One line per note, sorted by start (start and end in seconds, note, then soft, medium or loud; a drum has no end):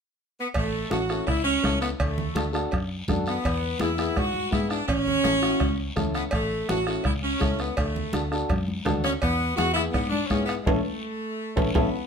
0.39 0.47 B3 medium
0.54 0.84 A1 medium
0.54 0.90 A3 loud
0.54 bombo low medium
0.54 bombo rim medium
0.54 cowbell loud
0.54 long guiro medium
0.73 high conga soft
0.90 1.20 A1 medium
0.90 0.97 C#4 medium
0.90 0.97 E4 medium
0.90 1.25 F#4 medium
0.90 0.97 A4 medium
0.90 bombo rim medium
0.90 high conga loud
0.90 short guiro medium
1.09 1.28 C#4 medium
1.09 1.29 E4 medium
1.09 1.29 A4 medium
1.09 bombo rim medium
1.09 short guiro medium
1.27 1.57 C#2 medium
1.27 1.44 E4 medium
1.27 bombo low medium
1.27 bombo rim medium
1.27 cowbell medium
1.27 long guiro medium
1.44 1.78 C#4 loud
1.63 1.93 C#2 medium
1.63 1.88 C#4 medium
1.63 1.89 E4 medium
1.63 1.89 A4 medium
1.63 bombo low medium
1.63 bombo rim medium
1.63 high conga medium
1.63 low timbale medium
1.63 short guiro medium
1.81 1.89 B3 medium
1.81 bombo rim medium
1.81 short guiro medium
2.00 2.29 D2 medium
2.00 2.68 A3 medium
2.00 bombo low medium
2.00 bombo rim medium
2.00 cowbell loud
2.00 long guiro medium
2.18 high conga soft
2.18 low conga medium
2.35 2.64 D2 loud
2.35 2.42 D4 medium
2.35 2.42 F#4 medium
2.35 2.42 A4 medium
2.35 bombo rim medium
2.35 high conga loud
2.35 short guiro medium
2.52 2.72 D4 medium
2.52 2.72 F#4 medium
2.52 2.72 A4 medium
2.52 bombo rim medium
2.52 short guiro medium
2.71 3.01 F#2 medium
2.71 bombo low medium
2.71 bombo rim medium
2.71 cowbell medium
2.71 long guiro medium
3.08 3.37 F#2 medium
3.08 3.33 D4 medium
3.08 3.34 F#4 medium
3.08 3.34 A4 medium
3.08 bombo low medium
3.08 bombo rim medium
3.08 high conga medium
3.08 low conga medium
3.08 short guiro medium
3.26 3.77 B3 loud
3.26 bombo rim medium
3.26 high conga soft
3.26 short guiro medium
3.44 3.73 E2 medium
3.44 bombo low medium
3.44 bombo rim medium
3.44 cowbell loud
3.44 long guiro medium
3.63 high conga soft
3.79 4.10 E2 medium
3.79 3.86 B3 medium
3.79 3.86 E4 medium
3.79 4.17 E4 loud
3.79 3.87 G#4 medium
3.79 bombo rim medium
3.79 high conga loud
3.79 short guiro medium
3.98 4.17 B3 medium
3.98 4.17 E4 medium
3.98 4.17 G#4 medium
3.98 bombo rim medium
3.98 short guiro medium
4.16 4.46 G#2 loud
4.16 4.53 F#4 loud
4.16 bombo low medium
4.16 bombo rim medium
4.16 cowbell medium
4.16 high conga medium
4.16 long guiro medium
4.34 high conga medium
4.51 4.81 G#2 medium
4.51 4.77 B3 medium
4.51 4.69 E4 medium
4.51 4.77 E4 medium
4.51 4.77 G#4 medium
4.51 bombo low medium
4.51 bombo rim medium
4.51 high conga medium
4.51 short guiro medium
4.69 4.88 D4 medium
4.69 bombo rim medium
4.69 high conga soft
4.69 short guiro medium
4.88 5.17 A1 loud
4.88 5.93 C#4 loud
4.88 bombo low medium
4.88 bombo rim medium
4.88 cowbell loud
4.88 long guiro medium
5.08 high conga soft
5.08 low conga medium
5.23 5.53 A1 medium
5.23 5.30 C#4 medium
5.23 5.31 E4 medium
5.23 5.31 A4 medium
5.23 bombo rim medium
5.23 high conga loud
5.23 short guiro medium
5.42 5.61 C#4 medium
5.42 5.61 E4 medium
5.42 5.61 F#4 medium
5.42 bombo rim medium
5.42 short guiro medium
5.60 5.90 C#2 loud
5.60 bombo low medium
5.60 bombo rim medium
5.60 cowbell medium
5.60 high conga medium
5.60 long guiro medium
5.96 6.26 C#2 medium
5.96 6.22 C#4 medium
5.96 6.22 E4 medium
5.96 6.22 A4 medium
5.96 bombo rim medium
5.96 high conga medium
5.96 low conga medium
5.96 short guiro medium
6.14 6.22 B3 medium
6.14 bombo rim medium
6.14 high conga soft
6.14 short guiro medium
6.31 6.62 A1 medium
6.31 6.66 A3 medium
6.31 bombo low medium
6.31 bombo rim medium
6.31 cowbell loud
6.31 long guiro medium
6.51 high conga soft
6.69 6.98 A1 loud
6.69 6.75 C#4 medium
6.69 6.76 E4 medium
6.69 7.02 F#4 medium
6.69 6.76 A4 medium
6.69 bombo rim medium
6.69 high conga loud
6.69 short guiro medium
6.87 7.06 C#4 medium
6.87 7.06 E4 medium
6.87 7.06 A4 medium
6.87 bombo rim medium
6.87 short guiro medium
7.04 7.34 C#2 loud
7.04 7.13 E4 medium
7.04 bombo low medium
7.04 bombo rim medium
7.04 cowbell medium
7.04 high conga medium
7.04 long guiro medium
7.23 7.56 C#4 loud
7.39 7.70 C#2 medium
7.39 7.66 C#4 medium
7.39 7.66 E4 medium
7.39 7.66 A4 medium
7.39 bombo low medium
7.39 bombo rim medium
7.39 high conga medium
7.39 short guiro medium
7.59 7.78 B3 medium
7.59 bombo rim medium
7.59 high conga soft
7.59 short guiro medium
7.76 8.06 D2 medium
7.76 8.45 A3 medium
7.76 bombo low medium
7.76 bombo rim medium
7.76 cowbell loud
7.76 long guiro medium
7.96 high conga soft
7.96 low conga medium
8.12 8.43 D2 medium
8.12 8.19 D4 medium
8.12 8.20 F#4 medium
8.12 8.20 A4 medium
8.12 bombo rim medium
8.12 high conga loud
8.12 short guiro medium
8.31 8.50 D4 medium
8.31 8.51 F#4 medium
8.31 8.51 A4 medium
8.31 bombo rim medium
8.31 short guiro medium
8.49 8.79 F#2 loud
8.49 bombo low medium
8.49 bombo rim medium
8.49 cowbell medium
8.49 high conga medium
8.49 long guiro medium
8.68 high conga medium
8.85 9.15 D2 medium
8.85 9.11 D4 medium
8.85 9.11 F#4 medium
8.85 9.11 A4 loud
8.85 bombo rim medium
8.85 high conga medium
8.85 low conga medium
8.85 low timbale medium
8.85 short guiro medium
9.04 9.12 C#4 loud
9.04 bombo rim medium
9.04 high conga soft
9.04 short guiro medium
9.21 9.51 E2 loud
9.21 9.55 B3 loud
9.21 bombo low medium
9.21 bombo rim medium
9.21 cowbell loud
9.21 long guiro medium
9.40 high conga soft
9.56 9.87 E2 medium
9.56 9.64 B3 medium
9.56 9.64 E4 medium
9.56 9.74 F#4 loud
9.56 9.64 G#4 medium
9.56 bombo rim medium
9.56 high conga loud
9.56 short guiro medium
9.73 9.95 B3 medium
9.73 9.82 E4 loud
9.73 9.96 E4 medium
9.73 9.96 G#4 medium
9.73 bombo rim medium
9.73 short guiro medium
9.91 10.23 G#2 loud
9.91 10.09 B3 medium
9.91 bombo low medium
9.91 bombo rim medium
9.91 cowbell medium
9.91 high conga medium
9.91 long guiro medium
10.09 10.28 D4 loud
10.09 high conga medium
10.26 10.46 C#4 medium
10.30 10.59 G#2 medium
10.30 10.55 B3 medium
10.30 10.56 E4 medium
10.30 10.56 G#4 medium
10.30 bombo low medium
10.30 bombo rim medium
10.30 high conga medium
10.30 short guiro medium
10.44 10.53 B3 medium
10.44 short guiro medium
10.49 bombo rim medium
10.62 11.69 A3 medium
10.62 long guiro medium
10.66 10.80 A1 loud
10.66 10.78 C#4 loud
10.66 10.78 E4 medium
10.66 10.78 A4 loud
10.66 bombo low loud
10.66 high conga medium
10.66 high timbale loud
11.56 11.70 A1 loud
11.56 11.68 C#4 medium
11.56 11.68 E4 medium
11.56 11.68 A4 medium
11.56 bombo low medium
11.56 high conga medium
11.56 high timbale loud
11.56 long guiro loud
11.74 11.89 A1 loud
11.74 12.07 B3 medium
11.74 11.87 C#4 medium
11.74 11.86 E4 medium
11.74 11.87 A4 loud
11.74 bombo low loud
11.74 high conga loud
11.74 high timbale medium
11.74 long guiro medium